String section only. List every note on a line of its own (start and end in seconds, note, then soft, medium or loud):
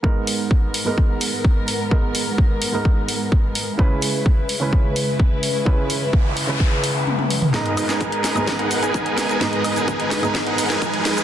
0.04 3.75 G#2 medium
0.04 7.50 G#3 medium
0.04 3.75 B3 medium
0.04 3.75 A#4 medium
3.79 7.50 C#3 medium
3.79 7.50 E4 medium
3.79 7.50 B4 medium
7.54 11.24 G#3 medium
7.54 11.24 B3 medium
7.54 11.24 D#4 medium
7.54 9.39 A#5 medium
9.41 11.24 G#4 medium